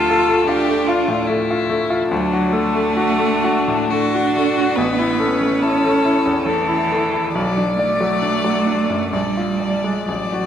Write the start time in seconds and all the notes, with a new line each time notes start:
Already playing: D2 F4 A4
0.10 A4
0.28 A3
0.47 D4 F4 G4
0.68 A3
0.86 F4
1.08 A2
1.27 A3 E4
1.50 F4
1.70 A3
1.90 F4
2.10 D2 F#3 D4
2.33 F#4
2.52 A3 A4
2.75 A3
2.97 F#4
3.19 A3
3.44 F#4
3.68 A2
3.90 A3 D4 F#4
4.15 F#4
4.35 A3 F#4
4.58 F#4
4.75 A1 B3 B4
4.99 E4
5.19 C#4 A4
5.41 A3
5.62 E4 A4
5.84 A3
6.05 E4
6.26 E2
6.45 E3 A3 A4
6.68 E4
6.92 A3
7.13 E4
7.34 B1 F#3 D5
7.58 D4
7.78 A3 D5
8.01 F#3
8.22 D4
8.44 F#3
8.67 D4
8.90 F#2
9.12 A#1 G3 D5
9.37 F4
9.60 D5
9.84 G#3
10.07 A1 F#3 D5
10.33 F#4